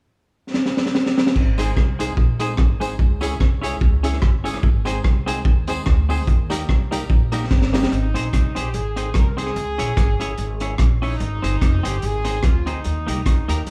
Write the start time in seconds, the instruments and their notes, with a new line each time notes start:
0.54 snare
0.66 snare
0.77 snare
0.86 snare
0.95 snare
1.06 snare
1.18 snare
1.27 snare
1.36 upright bass G#1, kick, crash
1.58 honky-tonk piano G#3 C4 D#4 G#4, clean electric guitar G#3 D#4 G#4 C5, closed hi-hat, tambourine
1.77 upright bass C2, kick, cross-stick
1.99 clean electric guitar G#3 D#4 G#4 C5, honky-tonk piano G#3 C4 D#4 G#4, closed hi-hat, tambourine
2.17 upright bass A#1, kick
2.40 clean electric guitar G#3 D#4 G#4 C5, honky-tonk piano G#3 C4 D#4 G#4, closed hi-hat, tambourine
2.57 upright bass G#1, kick, cross-stick
2.80 honky-tonk piano G#3 C4 D#4 G#4, clean electric guitar G#3 D#4 G#4 C5, closed hi-hat, tambourine
2.99 upright bass C#2, kick
3.21 honky-tonk piano G#3 C#4 E4 G#4, clean electric guitar C#4 E4 G#4 C#5, closed hi-hat, tambourine
3.40 upright bass C2, kick, cross-stick
3.62 honky-tonk piano G#3 C#4 E4 G#4, clean electric guitar C#4 E4 G#4 C#5, closed hi-hat, tambourine
3.81 upright bass C#2, kick
4.03 honky-tonk piano G#3 C#4 E4 G#4, clean electric guitar C#4 E4 G#4 C#5, closed hi-hat, tambourine
4.14 cross-stick
4.22 upright bass G1, kick, cross-stick
4.44 honky-tonk piano G#3 C#4 E4 G#4, clean electric guitar C#4 E4 G#4 C#5, closed hi-hat, tambourine
4.54 cross-stick
4.63 upright bass G#1, kick
4.85 honky-tonk piano G#3 C4 D#4 G#4, clean electric guitar C4 D#4 G#4 C5, closed hi-hat, tambourine
5.04 upright bass C2, kick, cross-stick
5.26 honky-tonk piano G#3 C4 D#4 G#4, clean electric guitar C4 D#4 G#4 C5, closed hi-hat, tambourine
5.45 upright bass D#2, kick
5.67 honky-tonk piano G#3 C4 D#4 G#4, clean electric guitar C4 D#4 G#4 C5, closed hi-hat, tambourine
5.86 upright bass D2, kick, cross-stick
6.09 honky-tonk piano G#3 C4 D#4 G#4, clean electric guitar C4 D#4 G#4 C5, open hi-hat, tambourine
6.28 upright bass D#2, kick, hi-hat pedal
6.50 honky-tonk piano G3 A#3 D#4 G4, clean electric guitar A#3 D#4 G4 A#4, closed hi-hat, tambourine
6.69 upright bass C2, kick, cross-stick
6.91 honky-tonk piano G3 A#3 D#4 G4, clean electric guitar A#3 D#4 G4 A#4, closed hi-hat, tambourine
7.10 upright bass A#1, kick
7.32 honky-tonk piano G3 A#3 D#4 G4, clean electric guitar A#3 D#4 G4 A#4, closed hi-hat, tambourine
7.51 upright bass G1, kick, snare
7.62 snare
7.73 honky-tonk piano G3 A#3 D#4 G4, clean electric guitar A#3 D#4 G4 A#4, horn section D#4, snare, tambourine
7.83 snare
7.92 upright bass G#1, closed hi-hat
8.14 upright bass A#1, clean electric guitar C4 D#4 G#4 C5, closed hi-hat
8.33 upright bass C2, kick, cross-stick, closed hi-hat
8.55 upright bass A#1, clean electric guitar C4 D#4 G#4 C5, horn section G4, closed hi-hat
8.74 upright bass G#1, horn section G#4, closed hi-hat
8.96 clean electric guitar C4 D#4 G#4 C5, closed hi-hat
9.14 upright bass C2, horn section A#4, kick, cross-stick, closed hi-hat
9.30 horn section A#4
9.37 clean electric guitar C4 D#4 G#4 C5, horn section G#4, closed hi-hat
9.47 cross-stick
9.56 upright bass C#2, closed hi-hat
9.78 upright bass A#1, clean electric guitar C#4 E4 G#4 C#5, closed hi-hat
9.97 upright bass G#1, kick, cross-stick, closed hi-hat
10.20 upright bass G1, clean electric guitar C#4 E4 G#4 C#5, closed hi-hat
10.38 upright bass G#1, closed hi-hat
10.60 clean electric guitar C#4 E4 G#4 C#5, closed hi-hat
10.78 upright bass A#1, kick, cross-stick, closed hi-hat
11.02 clean electric guitar C#4 E4 G#4 C#5, horn section D#4, open hi-hat
11.20 upright bass G#1, closed hi-hat
11.42 upright bass G1, clean electric guitar C4 D#4 G#4 C5, closed hi-hat
11.62 upright bass F1, kick, cross-stick, closed hi-hat
11.83 upright bass G1, clean electric guitar C4 D#4 G#4 C5, horn section G4, closed hi-hat
12.02 upright bass G#1, horn section G#4, closed hi-hat
12.25 clean electric guitar C4 D#4 G#4 C5, closed hi-hat
12.43 upright bass D2, horn section F4, kick, cross-stick, closed hi-hat
12.66 clean electric guitar C4 D#4 G#4 C5, horn section D#4, closed hi-hat
12.84 upright bass D#2, closed hi-hat
13.07 upright bass C2, clean electric guitar A#3 D#4 G4 A#4, closed hi-hat
13.26 upright bass C#2, kick, cross-stick, closed hi-hat
13.48 upright bass D#2, clean electric guitar A#3 D#4 G4 A#4, closed hi-hat
13.67 upright bass D#2, closed hi-hat